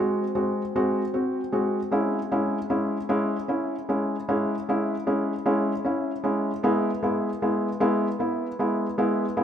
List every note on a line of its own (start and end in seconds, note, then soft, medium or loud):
0.00 0.23 G#3 medium
0.00 0.23 C4 soft
0.00 0.23 F#4 medium
0.35 0.61 G#3 medium
0.35 0.61 C4 soft
0.35 0.61 F#4 medium
0.76 1.01 G#3 medium
0.76 1.01 C4 medium
0.76 1.01 F#4 medium
1.14 1.40 C4 soft
1.14 1.40 F#4 medium
1.52 1.79 G#3 medium
1.52 1.79 C4 soft
1.52 1.79 F#4 medium
1.92 2.18 G#3 medium
1.92 2.18 C#4 medium
1.92 2.18 E4 medium
2.32 2.58 G#3 medium
2.32 2.58 C#4 medium
2.32 2.58 E4 medium
2.70 2.96 G#3 soft
2.70 2.96 C#4 medium
2.70 2.96 E4 medium
3.09 3.36 G#3 medium
3.09 3.36 C#4 medium
3.09 3.36 E4 medium
3.48 3.75 C#4 soft
3.48 3.75 E4 medium
3.89 4.15 G#3 medium
3.89 4.15 C#4 soft
3.89 4.15 E4 medium
4.29 4.54 G#3 medium
4.29 4.54 C#4 medium
4.29 4.54 E4 medium
4.69 4.94 G#3 medium
4.69 4.94 C#4 medium
4.69 4.94 E4 medium
5.07 5.32 G#3 medium
5.07 5.33 C#4 medium
5.07 5.33 E4 medium
5.46 5.72 G#3 medium
5.46 5.72 C#4 medium
5.46 5.72 E4 medium
5.85 6.11 C#4 medium
5.85 6.11 E4 medium
6.24 6.50 G#3 medium
6.24 6.50 C#4 soft
6.24 6.50 E4 medium
6.63 6.89 G#3 medium
6.63 6.89 B3 medium
6.63 6.90 E4 medium
7.03 7.29 G#3 medium
7.03 7.29 B3 medium
7.03 7.29 E4 medium
7.42 7.68 G#3 medium
7.42 7.68 B3 soft
7.42 7.68 E4 medium
7.80 8.07 G#3 medium
7.80 8.07 B3 medium
7.80 8.07 E4 medium
8.19 8.46 B3 medium
8.19 8.46 E4 medium
8.59 8.85 G#3 medium
8.59 8.86 B3 medium
8.59 8.86 E4 medium
8.98 9.24 G#3 medium
8.98 9.25 B3 medium
8.98 9.25 E4 medium
9.37 9.44 G#3 medium
9.37 9.44 B3 medium
9.37 9.44 E4 medium